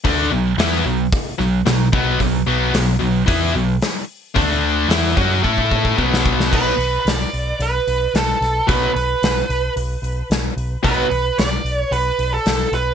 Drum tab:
CC |----------------|----------------|----------------|x---------------|
HH |o---o---o---o---|o---o---o---o---|o---o-----------|--o-o-o-o-o-o-o-|
SD |----o-----o-o---|----o-------o---|----o--------o-o|----o-------o-o-|
BD |o-------o-----o-|o-------o-------|o-----o-ooooo-o-|o---------------|

CC |----------------|----------------|
HH |o-o-o-o-o-o-o-o-|o-o-o-o-o-o-o-o-|
SD |----o-------o---|----o-------o-o-|
BD |o---------------|o---------------|